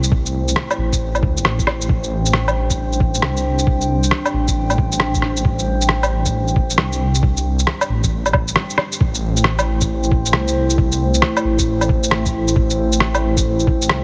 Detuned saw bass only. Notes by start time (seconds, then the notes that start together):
Already playing: C2
0.78 A1
1.00 A1
1.23 D2
1.37 E1
1.45 A1
1.89 A1
2.56 A1
3.15 A1
3.22 C2
4.34 A1
4.56 A1
5.45 A1
6.12 A1
6.70 A1
6.78 C2
7.89 A1
8.12 A1
9.01 A1
9.67 A1
10.26 A1
10.34 C2
11.45 A1
11.67 A1
12.56 A1
13.23 A1
13.82 A1
13.89 C2